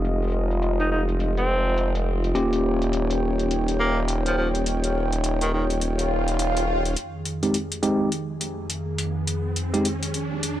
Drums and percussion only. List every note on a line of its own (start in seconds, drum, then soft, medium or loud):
0.05 closed hi-hat medium
0.22 closed hi-hat soft
0.24 closed hi-hat soft
0.28 closed hi-hat soft
0.30 closed hi-hat soft
0.32 closed hi-hat soft
0.51 closed hi-hat soft
0.62 closed hi-hat medium
0.80 closed hi-hat soft
1.09 closed hi-hat soft
1.20 closed hi-hat medium
1.37 closed hi-hat soft
1.78 closed hi-hat medium
1.95 closed hi-hat medium
2.24 closed hi-hat soft
2.35 closed hi-hat medium
2.53 closed hi-hat medium
2.82 closed hi-hat soft
2.93 closed hi-hat medium
3.11 closed hi-hat soft
3.39 closed hi-hat soft
3.51 closed hi-hat medium
3.68 closed hi-hat medium
4.08 closed hi-hat medium
4.26 closed hi-hat soft
4.55 closed hi-hat soft
4.66 closed hi-hat medium
4.84 closed hi-hat medium
5.13 closed hi-hat soft
5.24 closed hi-hat medium
5.41 closed hi-hat medium
5.70 closed hi-hat soft
5.81 closed hi-hat medium
5.99 closed hi-hat medium
6.28 closed hi-hat soft
6.39 closed hi-hat medium
6.57 closed hi-hat medium
6.85 closed hi-hat soft
6.96 closed hi-hat medium
7.25 closed hi-hat medium
7.43 closed hi-hat soft
7.54 closed hi-hat medium
7.72 closed hi-hat medium
7.83 closed hi-hat medium
8.12 closed hi-hat medium
8.41 closed hi-hat medium
8.70 closed hi-hat medium
8.98 closed hi-hat medium
9.27 closed hi-hat medium
9.56 closed hi-hat medium
9.74 closed hi-hat soft
9.85 closed hi-hat medium
10.03 closed hi-hat medium
10.14 closed hi-hat medium
10.43 closed hi-hat medium